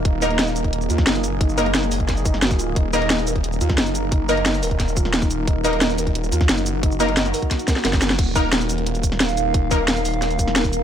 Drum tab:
CC |----------------|----------------|----------------|----------------|
HH |x-xxx-xxx-x-xxx-|x-xxx-oxx-x-xxx-|x-xxx-xxx-x-xxx-|x-xxx-oxx-x-xxx-|
SH |--x--xx--xx--xx-|-xx--xx--xx--xx-|--x--xx--xx--xx-|--x--xx--xx--xx-|
SD |----o------oo---|----oo--o--oo---|----o------oo---|----o---o--oo---|
BD |o------o---o----|o------oo-o--o--|o------o---o----|o------oo-o--o--|

CC |----------------|----------------|x---------------|----------------|
HH |x-xxx-xxx-x-xxx-|x-xxx-oxxxx-xxx-|x-x-x-xxxxx-xxx-|x-x-x-oxxxx-xxx-|
SH |--x--xx--xx--xx-|-xx--xx--xx--xx-|--x--xx--xx--xx-|--x--xx--xx--xx-|
SD |----o------oo---|----oo--o-oooooo|----o------oo---|----o---o--oo---|
BD |o------o---o----|o------oo-o--o--|o-o-------o-----|o-o-------o--o--|